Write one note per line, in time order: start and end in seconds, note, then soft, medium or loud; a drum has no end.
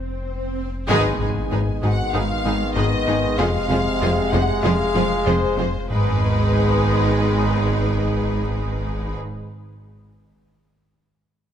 0.00 0.88 F1 medium
0.00 swell medium
0.89 3.41 G#1 medium
0.89 1.18 G#1 loud
0.89 1.18 G#2 loud
0.89 1.08 G#2 loud
0.89 3.36 D#3 loud
0.89 1.18 G#3 loud
0.89 5.54 G#3 loud
0.89 3.35 B3 loud
0.89 1.18 D#4 loud
0.89 5.54 G#4 loud
0.89 1.18 G#4 loud
0.89 1.19 B4 loud
0.89 1.79 G#5 loud
0.89 impact medium
1.20 1.28 G#1 medium
1.20 1.39 G#2 medium
1.20 1.29 G#2 medium
1.20 1.28 G#3 medium
1.20 1.28 D#4 medium
1.20 1.28 G#4 medium
1.20 1.28 B4 medium
1.51 1.60 G#1 medium
1.51 1.60 G#2 medium
1.51 1.71 G#2 medium
1.51 1.59 G#3 medium
1.51 1.59 D#4 medium
1.51 1.59 G#4 medium
1.51 1.59 B4 medium
1.82 1.91 G#1 medium
1.82 2.02 G#2 loud
1.82 1.91 G#2 medium
1.82 1.90 G#3 medium
1.82 1.90 D#4 medium
1.82 3.67 F#4 medium
1.82 1.91 G#4 medium
1.82 1.91 B4 medium
1.82 2.14 F#5 loud
2.14 2.22 G#1 medium
2.14 2.22 G#2 loud
2.14 2.33 G#2 medium
2.14 2.22 G#3 medium
2.14 2.22 D#4 medium
2.14 2.22 G#4 medium
2.14 2.22 B4 medium
2.14 2.77 F5 loud
2.45 2.53 G#1 medium
2.45 2.53 G#2 medium
2.45 2.64 G#3 medium
2.45 2.53 G#3 medium
2.45 2.54 D#4 medium
2.45 2.54 G#4 medium
2.45 2.54 B4 medium
2.76 2.85 G#1 medium
2.76 2.84 G#2 medium
2.76 2.95 G#2 loud
2.76 2.84 G#3 medium
2.76 2.84 D#4 medium
2.76 2.85 G#4 medium
2.76 2.85 B4 medium
2.76 3.38 D#5 loud
3.07 3.16 G#1 medium
3.07 3.15 G#2 medium
3.07 3.27 G#2 medium
3.07 3.16 G#3 medium
3.07 3.16 D#4 medium
3.07 3.16 G#4 medium
3.07 3.16 B4 medium
3.39 3.47 F1 loud
3.39 5.89 F1 loud
3.39 3.47 F2 loud
3.39 3.58 F2 loud
3.39 5.54 C3 loud
3.39 3.47 G#3 medium
3.39 5.54 C4 loud
3.39 3.47 F4 medium
3.39 3.47 G#4 loud
3.39 3.47 C5 loud
3.39 4.33 F5 loud
3.70 3.78 F1 loud
3.70 3.78 F2 loud
3.70 3.89 F2 medium
3.70 3.78 G#3 medium
3.70 3.78 F4 medium
3.70 3.79 G#4 medium
3.70 3.79 C5 medium
4.01 4.10 F1 loud
4.01 4.10 F2 loud
4.01 4.21 F2 medium
4.01 4.09 G#3 medium
4.01 4.09 F4 medium
4.01 4.10 G#4 medium
4.01 4.10 C5 medium
4.33 4.41 F1 loud
4.33 4.41 F2 loud
4.33 4.52 F2 loud
4.33 4.41 F3 medium
4.33 4.41 G#3 medium
4.33 4.41 G#4 medium
4.33 4.41 C5 medium
4.33 4.64 F#5 loud
4.63 4.73 F1 loud
4.63 4.72 F2 loud
4.63 4.83 F2 medium
4.63 4.72 G#3 loud
4.63 4.71 F4 medium
4.63 4.72 G#4 loud
4.63 4.72 C5 loud
4.63 5.27 F5 loud
4.95 5.03 F1 loud
4.95 5.03 F2 loud
4.95 5.14 F3 medium
4.95 5.03 G#3 medium
4.95 5.03 F4 medium
4.95 5.85 F4 medium
4.95 5.03 G#4 medium
4.95 5.03 C5 medium
4.95 5.85 F5 loud
5.26 5.34 F1 loud
5.26 5.34 F2 loud
5.26 5.45 F2 loud
5.26 5.34 G#3 medium
5.26 5.34 F4 medium
5.26 5.34 G#4 medium
5.26 5.34 C5 medium
5.26 5.90 C5 loud
5.57 5.65 F1 medium
5.57 5.65 F2 medium
5.57 5.77 F2 medium
5.57 5.66 G#3 medium
5.57 5.66 F4 medium
5.57 5.67 G#4 medium
5.57 5.67 C5 medium
5.89 9.15 G#1 loud
5.89 9.15 G#1 medium
5.89 9.15 G#2 loud
5.89 9.16 D#3 loud
5.89 9.15 G#3 medium
5.89 9.16 G#3 loud
5.89 9.16 B3 medium
5.89 9.15 D#4 medium
5.89 9.16 G#4 medium
5.89 9.15 B4 loud
5.89 9.16 B4 medium
5.89 sub drop loud